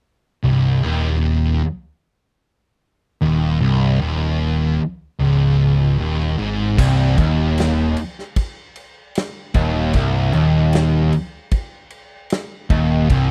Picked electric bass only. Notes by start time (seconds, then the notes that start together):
0.44 C1
0.84 D#1
3.22 D#1
3.62 C1
4.01 D#1
5.19 C#1
5.99 D#1
6.38 G#1
6.78 C1
7.18 D#1
9.55 D#1
9.94 C1
10.34 D#1
12.70 D#1
13.10 C1